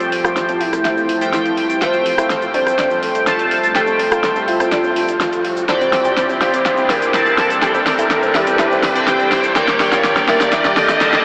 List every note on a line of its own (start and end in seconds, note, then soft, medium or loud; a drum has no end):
0.00 5.65 A2 medium
0.00 1.18 F3 medium
0.00 5.65 F3 medium
0.00 9.52 G3 medium
0.00 1.18 A3 medium
0.00 5.65 C4 medium
0.00 0.09 C4 medium
0.00 0.62 F4 loud
0.00 1.78 G4 medium
0.00 1.18 C5 medium
0.00 1.18 G5 medium
0.00 closed hi-hat soft
0.00 riser medium
0.00 shaker soft
0.12 0.21 C4 medium
0.12 open hi-hat loud
0.25 0.33 F4 loud
0.25 cross-stick medium
0.25 closed hi-hat medium
0.25 shaker medium
0.36 0.45 C4 medium
0.36 snare medium
0.36 closed hi-hat medium
0.36 shaker medium
0.48 0.57 C4 medium
0.48 closed hi-hat soft
0.48 shaker soft
0.61 0.69 E4 medium
0.61 1.24 E4 loud
0.61 open hi-hat medium
0.73 0.81 C4 medium
0.73 cross-stick medium
0.73 closed hi-hat medium
0.73 shaker medium
0.85 0.94 E4 medium
0.85 snare medium
0.85 closed hi-hat medium
0.85 shaker medium
0.97 1.06 C4 medium
0.97 shaker soft
1.09 open hi-hat loud
1.21 1.79 F3 medium
1.21 1.79 A3 medium
1.21 1.79 C5 medium
1.21 1.79 G5 loud
1.21 closed hi-hat medium
1.21 shaker medium
1.33 1.83 E4 medium
1.33 snare medium
1.33 closed hi-hat medium
1.33 shaker medium
1.46 closed hi-hat soft
1.46 shaker soft
1.57 open hi-hat medium
1.70 closed hi-hat soft
1.70 shaker medium
1.81 3.24 A3 medium
1.81 3.24 F4 medium
1.81 1.90 F4 medium
1.81 5.65 A4 medium
1.81 2.45 C5 loud
1.81 3.24 C5 medium
1.81 3.24 G5 medium
1.81 snare medium
1.81 closed hi-hat medium
1.81 shaker medium
1.93 2.02 F3 medium
1.93 closed hi-hat soft
1.93 shaker soft
2.06 2.15 F3 medium
2.06 open hi-hat loud
2.18 2.27 E4 medium
2.18 cross-stick medium
2.18 closed hi-hat medium
2.18 shaker medium
2.30 2.39 F3 medium
2.30 snare medium
2.30 closed hi-hat medium
2.30 shaker medium
2.42 2.51 F3 medium
2.42 closed hi-hat soft
2.42 shaker soft
2.54 2.63 D4 medium
2.54 2.98 C5 loud
2.54 open hi-hat loud
2.67 2.75 F3 medium
2.67 cross-stick medium
2.67 closed hi-hat medium
2.67 shaker medium
2.78 2.87 D4 medium
2.78 snare medium
2.78 closed hi-hat medium
2.78 shaker medium
2.90 2.99 F3 medium
2.90 shaker soft
3.02 3.66 A4 loud
3.02 open hi-hat loud
3.15 closed hi-hat soft
3.15 shaker medium
3.27 3.72 A3 medium
3.27 3.72 F4 medium
3.27 3.72 C5 medium
3.27 3.72 A5 loud
3.27 snare medium
3.27 closed hi-hat medium
3.27 shaker medium
3.39 closed hi-hat soft
3.39 shaker soft
3.51 open hi-hat medium
3.63 closed hi-hat soft
3.63 shaker medium
3.75 5.06 A3 medium
3.75 5.05 F4 medium
3.75 3.84 G4 loud
3.75 4.38 A4 loud
3.75 5.06 C5 medium
3.75 5.06 G5 medium
3.75 snare medium
3.75 closed hi-hat medium
3.75 shaker medium
3.87 3.96 C4 medium
3.87 closed hi-hat soft
3.87 shaker soft
3.99 4.08 C4 medium
3.99 open hi-hat loud
4.11 4.20 F4 medium
4.11 cross-stick medium
4.11 closed hi-hat medium
4.11 shaker medium
4.23 4.32 C4 medium
4.23 snare medium
4.23 closed hi-hat medium
4.23 shaker medium
4.36 4.44 C4 medium
4.36 closed hi-hat soft
4.36 shaker soft
4.48 4.57 E4 medium
4.48 5.11 F4 loud
4.48 open hi-hat loud
4.60 4.68 C4 medium
4.60 cross-stick medium
4.60 closed hi-hat medium
4.60 shaker medium
4.71 4.81 D4 medium
4.71 snare medium
4.71 closed hi-hat medium
4.71 shaker medium
4.84 4.93 C4 medium
4.84 shaker soft
4.96 open hi-hat loud
5.08 closed hi-hat soft
5.08 shaker medium
5.20 5.64 F4 medium
5.20 snare medium
5.20 closed hi-hat medium
5.20 shaker medium
5.32 closed hi-hat soft
5.32 shaker soft
5.45 open hi-hat medium
5.57 closed hi-hat soft
5.57 shaker medium
5.68 9.52 C3 medium
5.68 9.52 E3 medium
5.68 7.11 C4 medium
5.68 9.52 D4 medium
5.68 7.11 E4 medium
5.68 7.60 G4 medium
5.68 5.77 A4 medium
5.68 6.32 C5 loud
5.68 7.11 D5 medium
5.68 7.11 G5 loud
5.68 snare medium
5.68 closed hi-hat medium
5.68 shaker medium
5.81 5.89 C4 medium
5.81 closed hi-hat soft
5.81 shaker soft
5.93 6.02 C4 medium
5.93 snare medium
5.93 open hi-hat loud
6.05 6.14 G4 loud
6.05 closed hi-hat soft
6.05 shaker medium
6.17 6.26 C4 medium
6.17 snare medium
6.17 closed hi-hat medium
6.17 shaker medium
6.29 6.38 C4 medium
6.29 closed hi-hat soft
6.29 shaker soft
6.41 6.50 F4 medium
6.41 6.91 C5 loud
6.41 snare medium
6.41 open hi-hat medium
6.53 6.62 C4 medium
6.53 closed hi-hat medium
6.53 shaker medium
6.65 6.74 F4 medium
6.65 snare medium
6.65 closed hi-hat medium
6.65 shaker medium
6.77 6.86 C4 medium
6.77 shaker soft
6.90 7.53 A#4 loud
6.90 snare medium
6.90 open hi-hat loud
7.02 closed hi-hat soft
7.02 shaker medium
7.14 7.59 C4 medium
7.14 7.59 E4 medium
7.14 7.59 D5 medium
7.14 7.59 A5 loud
7.14 snare medium
7.14 closed hi-hat medium
7.14 shaker medium
7.26 closed hi-hat soft
7.26 shaker soft
7.38 snare medium
7.38 open hi-hat medium
7.50 closed hi-hat soft
7.50 shaker medium
7.62 8.93 C4 medium
7.62 8.93 E4 medium
7.62 7.71 G4 loud
7.62 9.54 A4 medium
7.62 8.36 A4 loud
7.62 8.93 D5 medium
7.62 8.93 G5 medium
7.62 snare medium
7.62 closed hi-hat medium
7.62 shaker medium
7.74 7.83 C4 medium
7.74 closed hi-hat soft
7.74 shaker soft
7.86 7.95 C4 medium
7.86 snare medium
7.86 open hi-hat loud
7.98 8.07 E4 medium
7.98 closed hi-hat medium
7.98 shaker medium
8.10 8.19 C4 medium
8.10 snare medium
8.10 closed hi-hat medium
8.10 shaker medium
8.23 8.31 C4 medium
8.23 closed hi-hat soft
8.23 shaker soft
8.35 8.44 E4 medium
8.35 8.98 G4 loud
8.35 snare medium
8.35 open hi-hat medium
8.47 8.56 C4 medium
8.47 closed hi-hat medium
8.47 shaker medium
8.59 8.68 E4 medium
8.59 snare medium
8.59 closed hi-hat medium
8.59 shaker medium
8.71 8.80 C4 medium
8.71 shaker soft
8.83 snare medium
8.83 open hi-hat loud
8.95 9.53 C4 medium
8.95 9.53 E4 medium
8.95 9.53 D5 medium
8.95 9.53 G5 loud
8.95 closed hi-hat medium
8.95 shaker medium
9.07 9.57 G4 medium
9.07 snare medium
9.07 closed hi-hat medium
9.07 shaker medium
9.20 closed hi-hat soft
9.20 shaker soft
9.31 snare medium
9.31 open hi-hat medium
9.43 closed hi-hat medium
9.43 shaker medium
9.55 11.25 A#2 medium
9.55 11.25 D3 medium
9.55 11.25 G3 medium
9.55 10.98 A#3 medium
9.55 11.25 D4 medium
9.55 11.25 G4 medium
9.55 10.98 G4 medium
9.55 9.65 G4 medium
9.55 10.19 A#4 loud
9.55 10.98 D5 medium
9.55 10.98 G5 medium
9.55 snare medium
9.55 closed hi-hat medium
9.55 shaker medium
9.68 9.77 G3 medium
9.68 snare medium
9.68 closed hi-hat soft
9.68 shaker soft
9.80 9.89 G3 medium
9.80 snare medium
9.80 open hi-hat loud
9.92 10.01 F4 medium
9.92 snare medium
9.92 closed hi-hat medium
9.92 shaker medium
10.04 10.13 G3 medium
10.04 snare medium
10.04 closed hi-hat medium
10.04 shaker medium
10.16 10.25 G3 medium
10.16 snare medium
10.16 closed hi-hat soft
10.16 shaker soft
10.28 10.37 E4 medium
10.28 10.72 A#4 loud
10.28 snare loud
10.28 open hi-hat medium
10.41 10.49 G3 medium
10.41 snare medium
10.41 closed hi-hat medium
10.41 shaker medium
10.52 10.61 E4 medium
10.52 snare loud
10.52 closed hi-hat medium
10.52 shaker medium
10.64 10.73 G3 medium
10.64 snare medium
10.64 shaker soft
10.77 11.25 A4 loud
10.77 snare loud
10.77 open hi-hat loud
10.89 snare medium
10.89 closed hi-hat medium
10.89 shaker medium
11.01 11.25 A#3 loud
11.01 11.25 G4 medium
11.01 11.25 D5 medium
11.01 11.25 A5 loud
11.01 snare loud
11.01 closed hi-hat medium
11.01 shaker medium
11.13 snare medium
11.13 closed hi-hat soft
11.13 shaker soft